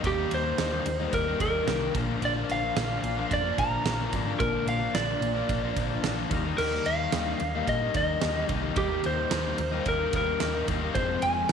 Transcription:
0.03 picked electric bass D#2, overdriven electric guitar D#3 G3 A#3 D#4, tonewheel organ G3 A#3 D#4, lead electric guitar G4, kick, ride
0.18 overdriven electric guitar G3 A#3 D#4
0.31 picked electric bass D#2, lead electric guitar C5, ride
0.58 picked electric bass D#2, overdriven electric guitar D#3 G3 A#3 D#4, snare, ride
0.72 overdriven electric guitar G3 A#3 D#4
0.86 picked electric bass D#2, muted overdriven electric guitar stroke, ride
0.99 overdriven electric guitar G3 A#3 D#4
1.13 picked electric bass D#2, lead electric guitar A#4, kick, ride
1.26 overdriven electric guitar G3 A#3 D#4
1.40 picked electric bass D#2, overdriven electric guitar D#3 G3 A#3 D#4, lead electric guitar A#4, kick, ride
1.66 picked electric bass C2, overdriven electric guitar D#3 G3 A#3 D#4, snare, ride
1.80 overdriven electric guitar G3 A#3 D#4
1.94 picked electric bass A#1, overdriven electric guitar A#2 D3 F3 A#3 D4, tonewheel organ F3 A#3 D4 A#4, kick, ride
2.08 overdriven electric guitar F3 A#3 D4
2.21 picked electric bass A#1, overdriven electric guitar A#2 D3 F3 A#3 D4, ride
2.25 lead electric guitar D5
2.36 overdriven electric guitar F3 A#3 D4
2.49 picked electric bass A#1, lead electric guitar F5, ride
2.76 picked electric bass A#1, overdriven electric guitar A#2 D3 F3 A#3 D4, snare, ride
2.89 overdriven electric guitar F3 A#3 D4
3.03 picked electric bass A#1, muted overdriven electric guitar stroke, ride
3.17 overdriven electric guitar F3 A#3 D4
3.31 picked electric bass F2, lead electric guitar D5, kick, ride
3.43 overdriven electric guitar F3 A#3 D4
3.58 picked electric bass A#1, overdriven electric guitar D3 F3 A#3 D4, lead electric guitar A#5, kick, ride
3.84 picked electric bass A#1, overdriven electric guitar A#2 D3 F3 A#3 D4, snare, ride
3.99 overdriven electric guitar F3 A#3 D4
4.12 picked electric bass G#1, overdriven electric guitar D3 F3 A#3 D4, tonewheel organ F3 A#3 D4, kick, ride
4.26 overdriven electric guitar F3 A#3 D4
4.39 picked electric bass A#1, overdriven electric guitar A#2 D3 F3 A#3 D4, lead electric guitar A#4, kick, ride
4.54 overdriven electric guitar F3 A#3 D4
4.66 picked electric bass A#1, lead electric guitar F5, ride
4.94 picked electric bass A#1, overdriven electric guitar A#2 D3 F3 A#3 D4, lead electric guitar D5, snare, ride
5.08 overdriven electric guitar F3 A#3 D4
5.21 picked electric bass A#1, muted overdriven electric guitar stroke, ride
5.34 overdriven electric guitar F3 A#3 D4
5.49 picked electric bass A#1, kick, ride
5.63 overdriven electric guitar F3 A#3 D4
5.76 picked electric bass A#1, overdriven electric guitar D3 F3 A#3 D4, kick, ride
6.04 picked electric bass A#1, overdriven electric guitar A#2 D3 F3 A#3 D4, snare, ride
6.17 overdriven electric guitar F3 A#3 D4
6.30 picked electric bass D#2, overdriven electric guitar D#3 G3 A#3 D#4, tonewheel organ G3 A#3 D#4 A#4, kick, ride
6.45 overdriven electric guitar G3 A#3 D#4
6.58 picked electric bass D#2, overdriven electric guitar D#3 G3 A#3 D#4, lead electric guitar A#4, crash
6.73 overdriven electric guitar G3 A#3 D#4
6.86 picked electric bass D#2, lead electric guitar F5, ride
7.12 picked electric bass D#2, overdriven electric guitar D#3 G3 A#3 D#4, snare, ride
7.27 overdriven electric guitar G3 A#3 D#4
7.40 picked electric bass D#2, muted overdriven electric guitar stroke, ride
7.55 overdriven electric guitar G3 A#3 D#4
7.67 picked electric bass A#2, lead electric guitar D#5, kick, ride
7.81 overdriven electric guitar G3 A#3 D#4
7.94 picked electric bass D#2, overdriven electric guitar D#3 G3 A#3 D#4, lead electric guitar D#5, kick, ride
8.21 picked electric bass D#2, overdriven electric guitar D#3 G3 A#3 D#4, snare, ride
8.35 overdriven electric guitar G3 A#3 D#4
8.48 picked electric bass C2, overdriven electric guitar D#3 G3 A#3 D#4, tonewheel organ A#3 D#4 G4 A#4, kick, ride
8.63 overdriven electric guitar G3 A#3 D#4
8.76 picked electric bass D#2, overdriven electric guitar D#3 G3 A#3 D#4, lead electric guitar G4, kick, ride
8.89 overdriven electric guitar G3 A#3 D#4
9.04 picked electric bass D#2, lead electric guitar C5, ride
9.31 picked electric bass D#2, overdriven electric guitar D#3 G3 A#3 D#4, snare, ride
9.45 overdriven electric guitar G3 A#3 D#4
9.58 picked electric bass D#2, muted overdriven electric guitar stroke, ride
9.71 overdriven electric guitar G3 A#3 D#4
9.86 picked electric bass D#2, lead electric guitar A#4, kick, ride
9.98 overdriven electric guitar G3 A#3 D#4
10.13 picked electric bass D#2, overdriven electric guitar D#3 G3 A#3 D#4, lead electric guitar A#4, kick, ride
10.40 picked electric bass D#2, overdriven electric guitar D#3 G3 A#3 D#4, snare, ride
10.55 overdriven electric guitar G3 A#3 D#4
10.68 picked electric bass D#2, overdriven electric guitar D#3 G3 A#3 D#4, kick, ride
10.82 overdriven electric guitar G3 A#3 D#4
10.95 picked electric bass F1, overdriven electric guitar F2 C3 F3 G#3, tonewheel organ G#3 C4 F4 C5, lead electric guitar C5, kick, ride
10.99 overdriven electric guitar C4
11.09 overdriven electric guitar F3 G#3 C4
11.22 picked electric bass F1, lead electric guitar G#5, ride

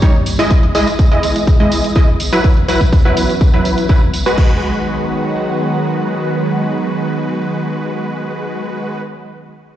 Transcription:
Already playing: analog synth pad G2 D#3 G3 A#3 C#4 G4
0.02 supersaw synth G3 D#4 C#5, kick, closed hi-hat, tambourine
0.26 open hi-hat, tambourine
0.39 supersaw synth G#3 E4 D#5, closed hi-hat, tambourine
0.51 analog synth pad E3 G#3 B3 G#4 D#5, kick, closed hi-hat, tambourine
0.63 closed hi-hat
0.75 supersaw synth G#3 E4 D#5, open hi-hat, tambourine
0.87 closed hi-hat, tambourine
0.99 kick, closed hi-hat, tambourine
1.12 supersaw synth G#3 E4 D#5, closed hi-hat
1.23 open hi-hat, tambourine
1.36 closed hi-hat, tambourine
1.47 kick, closed hi-hat, tambourine
1.60 supersaw synth G#3 E4 D#5, closed hi-hat
1.72 open hi-hat, tambourine
1.84 closed hi-hat, tambourine
1.95 supersaw synth G#3 E4 D#5, kick, closed hi-hat, tambourine
2.20 open hi-hat, tambourine
2.32 supersaw synth F#3 E4 B4, closed hi-hat, tambourine
2.44 analog synth pad F#3 B3 C#4 F#4, kick, closed hi-hat, tambourine
2.57 closed hi-hat
2.68 supersaw synth F#3 E4 B4, open hi-hat, tambourine
2.81 kick, closed hi-hat, tambourine
2.93 kick, closed hi-hat, tambourine
3.05 supersaw synth F#3 E4 B4, closed hi-hat
3.17 open hi-hat, tambourine
3.29 closed hi-hat, tambourine
3.41 kick, closed hi-hat, tambourine
3.54 supersaw synth F#3 E4 B4, closed hi-hat
3.65 open hi-hat, tambourine
3.77 closed hi-hat, tambourine
3.89 supersaw synth F#3 E4 B4, kick, closed hi-hat, tambourine
4.13 open hi-hat, tambourine
4.26 supersaw synth G#3 F#4 B4, closed hi-hat, tambourine
4.38 analog synth pad D#3 F#3 G#3 B3 F#4, supersaw synth G#3 F#4 B4, kick, crash

